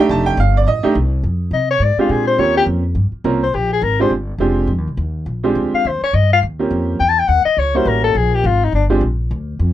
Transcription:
Already playing: upright piano A3 D4 D#4
0.00 upright piano G4
0.09 upright bass F1, upright piano A5
0.26 upright piano G5
0.37 upright bass G1, upright piano F5
0.57 upright piano D5
0.67 upright bass A1, upright piano D#5
0.83 upright piano A3 D4 D#4 G4, muted upright bass stroke
0.95 upright bass C2
1.23 upright bass F2
1.51 upright bass C3, soprano saxophone D#5
1.70 soprano saxophone C#5
1.80 upright bass G#2, soprano saxophone D5
1.97 upright piano G#3 C4 D4 F4 G4, soprano saxophone F4, muted upright bass stroke
2.09 upright bass A#2, soprano saxophone G#4
2.27 soprano saxophone C5
2.38 upright bass D#2, upright piano A#3 C4 C#4 F4 G4, soprano saxophone C#5
2.57 soprano saxophone G4
2.66 upright bass F2
2.95 upright bass G2
3.12 muted upright bass stroke
3.24 upright bass C2, upright piano A#3 C4 C#4 F4 A#4
3.43 soprano saxophone C5
3.54 upright bass A#1, soprano saxophone G4
3.73 soprano saxophone G#4
3.82 upright bass G#1, soprano saxophone A#4
4.00 upright piano G#3 C4 D4 F4 G4, soprano saxophone C5
4.10 upright bass G1
4.38 upright bass F1, upright piano G#3 C4 D4 F4 G4
4.67 upright bass F2
4.78 upright bass D#2
4.87 upright bass C2
4.97 upright bass D#2
5.26 upright bass A#1
5.44 upright piano G#3 C4 D4 F4 G4
5.55 upright bass D2
5.73 soprano saxophone F5, muted upright bass stroke
5.85 upright bass D#2, soprano saxophone C5
6.02 soprano saxophone C#5, muted upright bass stroke
6.13 upright bass G2, soprano saxophone D#5
6.33 soprano saxophone F5
6.43 upright bass D#2
6.59 upright piano A#3 C4 C#4 F4 G4
6.71 upright bass F2
7.00 upright bass E2, soprano saxophone G5
7.09 soprano saxophone A5
7.19 soprano saxophone G5
7.28 upright bass D#2, soprano saxophone F#5
7.45 soprano saxophone D#5, muted upright bass stroke
7.57 upright bass C#2, soprano saxophone C#5
7.75 upright piano G3 A#3 C#4 E4 F#4, soprano saxophone C5
7.85 upright bass A1, soprano saxophone A#4
8.03 soprano saxophone A4
8.15 upright bass A#1, soprano saxophone G#4
8.34 soprano saxophone G4
8.44 upright bass G#1, soprano saxophone F4
8.64 soprano saxophone D#4
8.72 upright bass G1, soprano saxophone D4
8.90 upright piano G#3 C4 D4 F4 G4
9.01 upright bass A#1
9.31 upright bass D2
9.59 upright bass F2

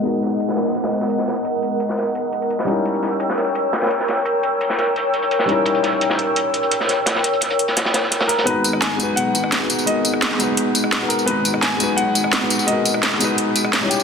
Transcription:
Already playing: analog synth pad G#3 B3 A#4 D#5 F#5
0.01 felt piano G#3 B3 D#4, closed hi-hat
0.06 felt piano F#4 A#4
0.13 closed hi-hat
0.22 snare, closed hi-hat
0.40 closed hi-hat
0.49 snare
0.57 snare, closed hi-hat
0.66 snare
0.75 snare, closed hi-hat
0.83 snare, closed hi-hat
0.92 snare, closed hi-hat
1.01 snare, closed hi-hat
1.10 closed hi-hat
1.18 snare
1.28 snare, closed hi-hat
1.45 closed hi-hat
1.62 closed hi-hat
1.80 closed hi-hat
1.89 snare
1.97 snare, closed hi-hat
2.15 closed hi-hat
2.32 closed hi-hat
2.42 closed hi-hat
2.50 closed hi-hat
2.59 snare
2.64 felt piano G3 C#4 D#4, analog synth pad C#5 G5 E6, closed hi-hat
2.70 felt piano E4 A#4
2.85 closed hi-hat
2.94 closed hi-hat
3.03 snare, closed hi-hat
3.20 closed hi-hat
3.30 snare
3.38 snare, closed hi-hat
3.55 closed hi-hat
3.73 snare, closed hi-hat
3.81 snare, closed hi-hat
3.86 snare, closed hi-hat
3.90 closed hi-hat
4.00 snare
4.08 snare, closed hi-hat
4.25 closed hi-hat
4.43 closed hi-hat
4.61 closed hi-hat
4.70 snare
4.78 snare, closed hi-hat
4.96 closed hi-hat
5.14 closed hi-hat
5.22 closed hi-hat
5.31 closed hi-hat
5.39 snare
5.45 felt piano G3 C#4 D#4, closed hi-hat
5.50 felt piano E4 A#4
5.66 closed hi-hat
5.75 closed hi-hat
5.83 snare, closed hi-hat
6.01 closed hi-hat
6.10 snare
6.19 closed hi-hat
6.36 closed hi-hat
6.54 closed hi-hat
6.63 closed hi-hat
6.71 closed hi-hat
6.80 snare
6.89 snare, closed hi-hat
7.06 snare, closed hi-hat
7.15 snare
7.24 closed hi-hat
7.33 closed hi-hat
7.41 snare, closed hi-hat
7.50 closed hi-hat
7.59 closed hi-hat
7.68 snare, closed hi-hat
7.77 snare, closed hi-hat
7.85 snare, closed hi-hat
7.94 snare, closed hi-hat
8.03 snare
8.11 snare, closed hi-hat
8.21 snare, closed hi-hat
8.28 grand piano A#4, snare, closed hi-hat
8.38 snare, closed hi-hat
8.43 detuned saw bass G#1, felt piano G#3 B3 D#4, analog synth pad B3 F#5 A#5, grand piano B4, closed hi-hat
8.49 felt piano F#4 A#5
8.64 closed hi-hat, tambourine
8.73 cross-stick
8.81 grand piano G#5, snare, closed hi-hat
8.96 detuned saw bass F#1, felt piano G#3 B3 D#4, closed hi-hat, tambourine
9.01 felt piano F#4 B4
9.16 detuned saw bass B1, grand piano F#5, closed hi-hat
9.35 detuned saw bass G#1, closed hi-hat, tambourine
9.44 cross-stick
9.52 snare, closed hi-hat
9.59 felt piano G#3 B3 D#4 F#4 B4
9.70 closed hi-hat, tambourine
9.79 tambourine
9.84 felt piano G#3 B3 D#4, grand piano D#5, closed hi-hat
9.89 felt piano F#4 A#4
10.05 closed hi-hat, tambourine
10.14 cross-stick
10.22 snare, closed hi-hat
10.31 snare
10.36 detuned saw bass F#1, felt piano G#3 B3 D#4, closed hi-hat, tambourine
10.41 felt piano F#4 B4
10.57 closed hi-hat
10.75 closed hi-hat, tambourine
10.84 cross-stick
10.92 snare, closed hi-hat
10.99 felt piano G#3 B3 D#4 F#4 B4
11.09 grand piano A#4, closed hi-hat, tambourine
11.19 tambourine
11.24 detuned saw bass G#1, felt piano G#3 B3 D#4, grand piano B4, closed hi-hat
11.29 felt piano F#4 A#5
11.45 closed hi-hat, tambourine
11.54 cross-stick
11.61 grand piano G#5, snare, closed hi-hat
11.76 detuned saw bass F#1, felt piano G#3 B3 D#4, closed hi-hat, tambourine
11.82 felt piano F#4 B4
11.96 detuned saw bass B1, grand piano F#5, closed hi-hat
12.15 detuned saw bass G#1, closed hi-hat, tambourine
12.24 cross-stick
12.33 snare, closed hi-hat
12.40 felt piano G#3 B3 D#4 F#4 B4
12.50 closed hi-hat, tambourine
12.59 tambourine
12.65 felt piano G#3 B3 D#4, grand piano D#5, closed hi-hat
12.70 felt piano F#4 A#4
12.85 closed hi-hat, tambourine
12.94 cross-stick
13.03 snare, closed hi-hat
13.12 snare
13.17 detuned saw bass F#1, felt piano G#3 B3 D#4, closed hi-hat, tambourine
13.22 felt piano F#4 B4
13.38 closed hi-hat
13.56 closed hi-hat, tambourine
13.65 cross-stick
13.73 snare, closed hi-hat
13.80 felt piano G3 C#4 D#4 E4 C#5
13.90 grand piano G4, analog synth pad G5, closed hi-hat, tambourine
14.00 tambourine

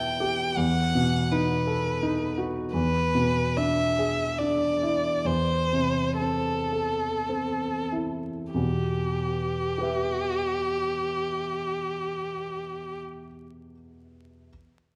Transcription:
Already playing: grand piano E2 B2 E4 B4 E5, violin G5
0.20 grand piano G4
0.57 grand piano E2, violin F#5
0.95 grand piano B2
1.32 grand piano D#4, violin B4
1.67 grand piano A4
2.02 grand piano D#4
2.38 grand piano F#4
2.73 grand piano E2, violin B4
3.15 grand piano B2
3.57 grand piano D4, violin E5
3.99 grand piano G#4
4.38 grand piano D4, violin D5
4.83 grand piano E4
5.25 grand piano E2, violin C5
5.72 grand piano C3
6.20 grand piano C4, violin A4
6.73 grand piano A4
7.29 grand piano C4
7.92 grand piano E4
8.53 grand piano E2 B2, violin G4
9.78 grand piano G4 B4
9.83 grand piano E5

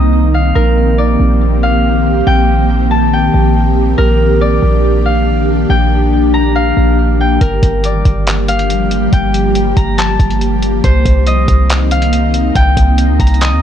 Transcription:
Already playing: 808-style bass C2, ambient pad D#3 A#3 C4 D#4, harp D#5 G5 A#5
0.34 harp F5
0.55 808-style bass A#1, ambient pad C4 G4, harp A#4
0.98 harp D5
1.20 808-style bass A#1
1.63 harp F5
2.27 808-style bass A#1, harp G5
2.91 harp A5
3.13 harp G5
3.34 808-style bass A#1
3.98 808-style bass A#1, ambient pad D4, harp A#4
4.41 harp D5
4.63 808-style bass A#1
5.06 harp F5
5.70 808-style bass A#1, harp G5
6.34 harp A#5
6.55 harp F5
6.77 808-style bass A#1
7.21 harp G5
7.41 808-style bass G1, ambient pad F3 G3 A#3 G4, harp A#4, kick, closed hi-hat
7.63 808-style bass G1, kick, closed hi-hat
7.84 harp D5, closed hi-hat
8.05 808-style bass G1, kick, closed hi-hat
8.27 clap, closed hi-hat
8.48 harp F5, closed hi-hat
8.59 closed hi-hat
8.70 closed hi-hat
8.91 closed hi-hat
9.13 808-style bass G1, harp G5, kick, closed hi-hat
9.34 closed hi-hat
9.55 closed hi-hat
9.77 808-style bass G1, harp A#5, kick, closed hi-hat
9.98 harp A5, clap, closed hi-hat
10.19 808-style bass G1, kick, closed hi-hat
10.30 closed hi-hat
10.41 closed hi-hat
10.62 closed hi-hat
10.84 808-style bass C2, ambient pad D#3 C4 D#4, harp C5, kick, closed hi-hat
11.05 808-style bass C2, kick, closed hi-hat
11.27 harp D#5, closed hi-hat
11.48 808-style bass C2, kick, closed hi-hat
11.70 clap, closed hi-hat
11.91 harp F5, closed hi-hat
12.02 closed hi-hat
12.13 closed hi-hat
12.34 closed hi-hat
12.55 808-style bass C2, harp G5, kick, closed hi-hat
12.77 808-style bass C2, kick, closed hi-hat
12.98 closed hi-hat
13.09 808-style bass D2
13.20 808-style bass C2, harp A#5, kick, closed hi-hat
13.27 closed hi-hat
13.34 closed hi-hat
13.41 harp D#5, clap, closed hi-hat
13.52 808-style bass D#2

